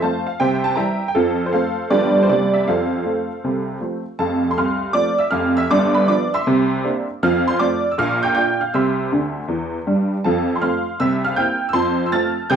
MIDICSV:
0, 0, Header, 1, 2, 480
1, 0, Start_track
1, 0, Key_signature, -1, "major"
1, 0, Tempo, 378788
1, 1456, Time_signature, 4, 2, 24, 8
1, 15916, End_track
2, 0, Start_track
2, 0, Title_t, "Honky-tonk piano"
2, 0, Program_c, 0, 3
2, 0, Control_c, 0, 64, 127
2, 27, Control_c, 0, 64, 0
2, 29, Note_on_c, 0, 81, 76
2, 32, Note_on_c, 0, 53, 38
2, 42, Note_on_c, 0, 57, 45
2, 43, Note_on_c, 0, 72, 61
2, 45, Note_on_c, 0, 60, 42
2, 45, Note_on_c, 0, 77, 55
2, 291, Note_off_c, 0, 53, 0
2, 299, Note_off_c, 0, 57, 0
2, 300, Note_off_c, 0, 60, 0
2, 318, Note_off_c, 0, 77, 0
2, 323, Note_off_c, 0, 72, 0
2, 337, Note_off_c, 0, 81, 0
2, 337, Note_on_c, 0, 77, 70
2, 497, Note_off_c, 0, 77, 0
2, 503, Note_on_c, 0, 36, 60
2, 503, Note_on_c, 0, 79, 95
2, 511, Note_on_c, 0, 48, 78
2, 519, Note_on_c, 0, 76, 66
2, 520, Note_on_c, 0, 72, 71
2, 720, Control_c, 0, 64, 127
2, 802, Note_off_c, 0, 72, 0
2, 802, Note_off_c, 0, 76, 0
2, 813, Note_on_c, 0, 81, 92
2, 815, Note_off_c, 0, 79, 0
2, 908, Note_off_c, 0, 36, 0
2, 913, Note_off_c, 0, 48, 0
2, 957, Note_on_c, 0, 82, 72
2, 963, Note_on_c, 0, 52, 37
2, 967, Note_on_c, 0, 60, 45
2, 975, Note_on_c, 0, 76, 62
2, 976, Note_off_c, 0, 81, 0
2, 977, Note_on_c, 0, 55, 42
2, 977, Note_on_c, 0, 79, 65
2, 993, Control_c, 0, 64, 0
2, 1231, Note_off_c, 0, 52, 0
2, 1234, Note_off_c, 0, 60, 0
2, 1241, Note_off_c, 0, 55, 0
2, 1347, Note_off_c, 0, 76, 0
2, 1347, Note_off_c, 0, 79, 0
2, 1366, Note_off_c, 0, 82, 0
2, 1371, Note_on_c, 0, 79, 76
2, 1454, Note_on_c, 0, 69, 84
2, 1455, Note_off_c, 0, 79, 0
2, 1462, Note_on_c, 0, 41, 78
2, 1462, Note_on_c, 0, 53, 65
2, 1467, Note_on_c, 0, 60, 60
2, 1468, Note_on_c, 0, 65, 65
2, 1690, Control_c, 0, 64, 127
2, 1834, Note_off_c, 0, 60, 0
2, 1834, Note_off_c, 0, 65, 0
2, 1853, Note_on_c, 0, 72, 71
2, 1855, Note_off_c, 0, 69, 0
2, 1870, Note_off_c, 0, 41, 0
2, 1870, Note_off_c, 0, 53, 0
2, 1935, Note_on_c, 0, 77, 74
2, 1936, Note_off_c, 0, 72, 0
2, 1946, Note_on_c, 0, 57, 39
2, 1947, Note_on_c, 0, 53, 38
2, 1955, Note_on_c, 0, 69, 65
2, 1955, Note_on_c, 0, 72, 63
2, 1956, Note_on_c, 0, 60, 46
2, 1958, Control_c, 0, 64, 0
2, 2209, Note_off_c, 0, 57, 0
2, 2210, Note_off_c, 0, 53, 0
2, 2216, Note_off_c, 0, 60, 0
2, 2396, Note_off_c, 0, 69, 0
2, 2396, Note_off_c, 0, 72, 0
2, 2412, Note_on_c, 0, 31, 66
2, 2412, Note_on_c, 0, 43, 84
2, 2414, Note_on_c, 0, 74, 93
2, 2419, Note_off_c, 0, 77, 0
2, 2422, Note_on_c, 0, 53, 50
2, 2426, Note_on_c, 0, 55, 50
2, 2428, Note_on_c, 0, 67, 70
2, 2433, Note_on_c, 0, 71, 64
2, 2436, Note_on_c, 0, 59, 43
2, 2664, Control_c, 0, 64, 127
2, 2687, Note_off_c, 0, 53, 0
2, 2689, Note_off_c, 0, 55, 0
2, 2697, Note_off_c, 0, 59, 0
2, 2796, Note_off_c, 0, 67, 0
2, 2799, Note_off_c, 0, 71, 0
2, 2817, Note_off_c, 0, 74, 0
2, 2822, Note_on_c, 0, 72, 78
2, 2825, Note_off_c, 0, 31, 0
2, 2825, Note_off_c, 0, 43, 0
2, 2903, Note_off_c, 0, 72, 0
2, 2908, Note_on_c, 0, 36, 63
2, 2908, Note_on_c, 0, 55, 38
2, 2908, Note_on_c, 0, 74, 80
2, 2910, Note_on_c, 0, 48, 68
2, 2914, Note_on_c, 0, 58, 36
2, 2916, Control_c, 0, 64, 0
2, 2924, Note_on_c, 0, 60, 42
2, 3151, Control_c, 0, 64, 127
2, 3171, Note_off_c, 0, 55, 0
2, 3176, Note_off_c, 0, 58, 0
2, 3183, Note_off_c, 0, 60, 0
2, 3215, Note_on_c, 0, 76, 68
2, 3222, Note_off_c, 0, 74, 0
2, 3315, Note_off_c, 0, 36, 0
2, 3316, Note_off_c, 0, 48, 0
2, 3382, Note_off_c, 0, 76, 0
2, 3391, Note_on_c, 0, 77, 72
2, 3395, Control_c, 0, 64, 0
2, 3399, Note_on_c, 0, 53, 61
2, 3401, Note_on_c, 0, 41, 59
2, 3409, Note_on_c, 0, 69, 58
2, 3409, Note_on_c, 0, 72, 59
2, 3632, Control_c, 0, 64, 127
2, 3802, Note_off_c, 0, 53, 0
2, 3803, Note_off_c, 0, 41, 0
2, 3877, Control_c, 0, 64, 0
2, 3877, Note_on_c, 0, 53, 36
2, 3878, Note_on_c, 0, 57, 33
2, 3889, Note_on_c, 0, 60, 37
2, 4139, Note_off_c, 0, 53, 0
2, 4140, Note_off_c, 0, 57, 0
2, 4147, Note_off_c, 0, 60, 0
2, 4361, Note_on_c, 0, 36, 57
2, 4364, Note_on_c, 0, 48, 58
2, 4764, Note_off_c, 0, 36, 0
2, 4766, Note_off_c, 0, 48, 0
2, 4790, Note_off_c, 0, 69, 0
2, 4790, Note_off_c, 0, 72, 0
2, 4824, Note_on_c, 0, 53, 35
2, 4832, Note_off_c, 0, 77, 0
2, 4836, Note_on_c, 0, 57, 31
2, 4838, Note_on_c, 0, 60, 42
2, 5090, Note_off_c, 0, 53, 0
2, 5098, Note_off_c, 0, 57, 0
2, 5100, Note_off_c, 0, 60, 0
2, 5307, Note_on_c, 0, 29, 60
2, 5307, Note_on_c, 0, 41, 66
2, 5308, Note_on_c, 0, 81, 75
2, 5320, Note_on_c, 0, 69, 57
2, 5324, Note_on_c, 0, 77, 56
2, 5543, Control_c, 0, 64, 127
2, 5686, Note_off_c, 0, 69, 0
2, 5687, Note_off_c, 0, 77, 0
2, 5692, Note_off_c, 0, 41, 0
2, 5693, Note_off_c, 0, 29, 0
2, 5707, Note_off_c, 0, 81, 0
2, 5712, Note_on_c, 0, 84, 71
2, 5792, Note_off_c, 0, 84, 0
2, 5798, Note_on_c, 0, 36, 73
2, 5802, Note_on_c, 0, 89, 78
2, 5808, Control_c, 0, 64, 0
2, 5813, Note_on_c, 0, 84, 68
2, 5816, Note_on_c, 0, 77, 61
2, 6184, Note_off_c, 0, 36, 0
2, 6249, Note_off_c, 0, 84, 0
2, 6251, Note_off_c, 0, 77, 0
2, 6251, Note_on_c, 0, 60, 46
2, 6251, Note_on_c, 0, 86, 101
2, 6253, Note_on_c, 0, 53, 49
2, 6264, Note_on_c, 0, 57, 47
2, 6267, Note_on_c, 0, 74, 81
2, 6276, Note_off_c, 0, 89, 0
2, 6520, Note_off_c, 0, 60, 0
2, 6522, Note_off_c, 0, 53, 0
2, 6530, Note_off_c, 0, 57, 0
2, 6563, Note_off_c, 0, 74, 0
2, 6569, Note_on_c, 0, 88, 79
2, 6577, Note_off_c, 0, 86, 0
2, 6589, Note_on_c, 0, 76, 62
2, 6724, Note_on_c, 0, 89, 89
2, 6735, Note_on_c, 0, 41, 76
2, 6736, Note_on_c, 0, 29, 76
2, 6741, Note_off_c, 0, 76, 0
2, 6742, Note_off_c, 0, 88, 0
2, 6747, Note_on_c, 0, 77, 66
2, 7042, Note_off_c, 0, 77, 0
2, 7053, Note_off_c, 0, 89, 0
2, 7056, Note_on_c, 0, 88, 94
2, 7070, Note_on_c, 0, 76, 81
2, 7126, Note_off_c, 0, 29, 0
2, 7126, Note_off_c, 0, 41, 0
2, 7221, Note_off_c, 0, 76, 0
2, 7225, Note_off_c, 0, 88, 0
2, 7230, Note_on_c, 0, 31, 82
2, 7231, Note_on_c, 0, 43, 90
2, 7231, Note_on_c, 0, 86, 98
2, 7244, Note_on_c, 0, 74, 80
2, 7464, Control_c, 0, 64, 127
2, 7532, Note_off_c, 0, 74, 0
2, 7533, Note_on_c, 0, 83, 85
2, 7547, Note_off_c, 0, 86, 0
2, 7553, Note_on_c, 0, 71, 64
2, 7638, Note_off_c, 0, 31, 0
2, 7639, Note_off_c, 0, 43, 0
2, 7703, Note_off_c, 0, 71, 0
2, 7704, Note_off_c, 0, 83, 0
2, 7704, Note_on_c, 0, 53, 54
2, 7706, Note_on_c, 0, 86, 88
2, 7712, Note_on_c, 0, 59, 45
2, 7717, Note_on_c, 0, 74, 75
2, 7720, Note_on_c, 0, 62, 54
2, 7730, Control_c, 0, 64, 0
2, 7970, Note_off_c, 0, 53, 0
2, 7976, Note_off_c, 0, 59, 0
2, 7981, Note_off_c, 0, 62, 0
2, 8008, Note_off_c, 0, 74, 0
2, 8024, Note_off_c, 0, 86, 0
2, 8034, Note_on_c, 0, 88, 100
2, 8040, Note_on_c, 0, 76, 70
2, 8040, Note_on_c, 0, 84, 76
2, 8197, Note_on_c, 0, 48, 93
2, 8198, Note_on_c, 0, 36, 76
2, 8422, Control_c, 0, 64, 127
2, 8602, Note_off_c, 0, 48, 0
2, 8603, Note_off_c, 0, 36, 0
2, 8663, Note_on_c, 0, 58, 49
2, 8671, Note_on_c, 0, 62, 52
2, 8672, Note_on_c, 0, 60, 54
2, 8690, Control_c, 0, 64, 0
2, 8929, Note_off_c, 0, 58, 0
2, 8935, Note_off_c, 0, 60, 0
2, 8935, Note_off_c, 0, 62, 0
2, 8942, Note_off_c, 0, 84, 0
2, 8943, Note_off_c, 0, 76, 0
2, 8990, Note_off_c, 0, 88, 0
2, 9159, Note_on_c, 0, 41, 83
2, 9162, Note_on_c, 0, 53, 94
2, 9162, Note_on_c, 0, 89, 108
2, 9180, Note_on_c, 0, 77, 81
2, 9371, Control_c, 0, 64, 127
2, 9460, Note_off_c, 0, 77, 0
2, 9472, Note_off_c, 0, 89, 0
2, 9473, Note_on_c, 0, 84, 86
2, 9497, Note_on_c, 0, 72, 64
2, 9563, Note_off_c, 0, 41, 0
2, 9565, Note_off_c, 0, 53, 0
2, 9623, Note_on_c, 0, 86, 93
2, 9627, Note_on_c, 0, 60, 53
2, 9628, Note_on_c, 0, 57, 54
2, 9633, Note_off_c, 0, 84, 0
2, 9635, Note_off_c, 0, 72, 0
2, 9640, Note_on_c, 0, 65, 54
2, 9640, Note_on_c, 0, 74, 70
2, 9649, Control_c, 0, 64, 0
2, 9892, Note_off_c, 0, 60, 0
2, 9893, Note_off_c, 0, 57, 0
2, 9901, Note_off_c, 0, 65, 0
2, 10005, Note_off_c, 0, 74, 0
2, 10024, Note_off_c, 0, 86, 0
2, 10029, Note_on_c, 0, 88, 73
2, 10110, Note_off_c, 0, 88, 0
2, 10114, Note_on_c, 0, 34, 74
2, 10122, Note_on_c, 0, 46, 96
2, 10122, Note_on_c, 0, 89, 106
2, 10134, Note_on_c, 0, 77, 83
2, 10341, Control_c, 0, 64, 127
2, 10416, Note_off_c, 0, 77, 0
2, 10425, Note_on_c, 0, 91, 94
2, 10431, Note_off_c, 0, 89, 0
2, 10449, Note_on_c, 0, 79, 78
2, 10520, Note_off_c, 0, 34, 0
2, 10524, Note_off_c, 0, 46, 0
2, 10559, Note_off_c, 0, 91, 0
2, 10578, Note_on_c, 0, 91, 98
2, 10584, Note_off_c, 0, 79, 0
2, 10585, Note_on_c, 0, 62, 44
2, 10586, Note_on_c, 0, 58, 43
2, 10602, Note_on_c, 0, 65, 52
2, 10603, Note_on_c, 0, 79, 78
2, 10608, Control_c, 0, 64, 0
2, 10850, Note_off_c, 0, 58, 0
2, 10850, Note_off_c, 0, 62, 0
2, 10862, Note_off_c, 0, 65, 0
2, 10890, Note_off_c, 0, 79, 0
2, 10899, Note_off_c, 0, 91, 0
2, 10908, Note_on_c, 0, 89, 70
2, 10918, Note_on_c, 0, 77, 54
2, 11064, Note_off_c, 0, 77, 0
2, 11070, Note_off_c, 0, 89, 0
2, 11073, Note_on_c, 0, 88, 81
2, 11079, Note_on_c, 0, 48, 75
2, 11081, Note_on_c, 0, 36, 65
2, 11088, Note_on_c, 0, 76, 57
2, 11089, Note_on_c, 0, 84, 65
2, 11303, Control_c, 0, 64, 127
2, 11482, Note_off_c, 0, 48, 0
2, 11483, Note_off_c, 0, 36, 0
2, 11559, Note_on_c, 0, 50, 61
2, 11563, Note_on_c, 0, 38, 57
2, 11565, Control_c, 0, 64, 0
2, 11914, Note_off_c, 0, 50, 0
2, 11917, Note_off_c, 0, 38, 0
2, 12015, Note_on_c, 0, 40, 63
2, 12025, Note_on_c, 0, 52, 63
2, 12378, Note_off_c, 0, 40, 0
2, 12385, Note_off_c, 0, 52, 0
2, 12505, Note_on_c, 0, 55, 55
2, 12507, Note_on_c, 0, 43, 58
2, 12779, Note_off_c, 0, 76, 0
2, 12780, Note_off_c, 0, 84, 0
2, 12823, Note_off_c, 0, 88, 0
2, 12864, Note_off_c, 0, 55, 0
2, 12865, Note_off_c, 0, 43, 0
2, 12982, Note_on_c, 0, 81, 80
2, 12989, Note_on_c, 0, 53, 71
2, 12993, Note_on_c, 0, 41, 76
2, 13001, Note_on_c, 0, 69, 64
2, 13001, Note_on_c, 0, 77, 63
2, 13208, Control_c, 0, 64, 127
2, 13362, Note_off_c, 0, 69, 0
2, 13362, Note_off_c, 0, 77, 0
2, 13377, Note_on_c, 0, 84, 64
2, 13380, Note_off_c, 0, 81, 0
2, 13394, Note_off_c, 0, 53, 0
2, 13396, Note_off_c, 0, 41, 0
2, 13444, Note_off_c, 0, 84, 0
2, 13453, Note_on_c, 0, 60, 43
2, 13453, Note_on_c, 0, 89, 83
2, 13454, Note_on_c, 0, 57, 39
2, 13457, Note_on_c, 0, 77, 65
2, 13462, Note_on_c, 0, 65, 53
2, 13463, Note_on_c, 0, 84, 59
2, 13480, Control_c, 0, 64, 0
2, 13719, Note_off_c, 0, 60, 0
2, 13720, Note_off_c, 0, 57, 0
2, 13726, Note_off_c, 0, 65, 0
2, 13905, Note_off_c, 0, 77, 0
2, 13908, Note_off_c, 0, 84, 0
2, 13936, Note_off_c, 0, 89, 0
2, 13936, Note_on_c, 0, 88, 100
2, 13940, Note_on_c, 0, 48, 75
2, 13946, Note_on_c, 0, 36, 73
2, 13956, Note_on_c, 0, 76, 73
2, 14182, Control_c, 0, 64, 127
2, 14242, Note_off_c, 0, 76, 0
2, 14251, Note_on_c, 0, 89, 99
2, 14253, Note_off_c, 0, 88, 0
2, 14268, Note_on_c, 0, 77, 70
2, 14347, Note_off_c, 0, 48, 0
2, 14350, Note_off_c, 0, 36, 0
2, 14400, Note_on_c, 0, 91, 92
2, 14408, Note_on_c, 0, 58, 45
2, 14409, Note_on_c, 0, 60, 51
2, 14413, Note_on_c, 0, 79, 72
2, 14414, Note_on_c, 0, 88, 59
2, 14415, Note_off_c, 0, 77, 0
2, 14417, Note_off_c, 0, 89, 0
2, 14422, Note_on_c, 0, 64, 43
2, 14433, Control_c, 0, 64, 0
2, 14674, Note_off_c, 0, 58, 0
2, 14675, Note_off_c, 0, 60, 0
2, 14684, Note_off_c, 0, 64, 0
2, 14785, Note_off_c, 0, 79, 0
2, 14785, Note_off_c, 0, 88, 0
2, 14806, Note_off_c, 0, 91, 0
2, 14811, Note_on_c, 0, 88, 84
2, 14867, Note_on_c, 0, 84, 100
2, 14869, Note_on_c, 0, 53, 80
2, 14876, Note_on_c, 0, 41, 74
2, 14880, Note_on_c, 0, 72, 67
2, 14884, Note_on_c, 0, 81, 73
2, 14895, Note_off_c, 0, 88, 0
2, 15146, Control_c, 0, 64, 127
2, 15257, Note_off_c, 0, 72, 0
2, 15259, Note_off_c, 0, 81, 0
2, 15279, Note_off_c, 0, 84, 0
2, 15284, Note_on_c, 0, 88, 73
2, 15288, Note_off_c, 0, 53, 0
2, 15292, Note_off_c, 0, 41, 0
2, 15361, Note_on_c, 0, 93, 101
2, 15365, Note_on_c, 0, 57, 49
2, 15367, Note_on_c, 0, 81, 67
2, 15369, Note_on_c, 0, 89, 73
2, 15371, Note_off_c, 0, 88, 0
2, 15373, Note_on_c, 0, 60, 56
2, 15374, Note_on_c, 0, 65, 55
2, 15385, Control_c, 0, 64, 0
2, 15631, Note_off_c, 0, 57, 0
2, 15636, Note_off_c, 0, 60, 0
2, 15637, Note_off_c, 0, 65, 0
2, 15815, Note_off_c, 0, 81, 0
2, 15816, Note_off_c, 0, 89, 0
2, 15836, Note_on_c, 0, 91, 116
2, 15839, Note_on_c, 0, 36, 84
2, 15844, Note_on_c, 0, 48, 101
2, 15846, Note_off_c, 0, 93, 0
2, 15861, Note_on_c, 0, 79, 90
2, 15916, Note_off_c, 0, 36, 0
2, 15916, Note_off_c, 0, 48, 0
2, 15916, Note_off_c, 0, 79, 0
2, 15916, Note_off_c, 0, 91, 0
2, 15916, End_track
0, 0, End_of_file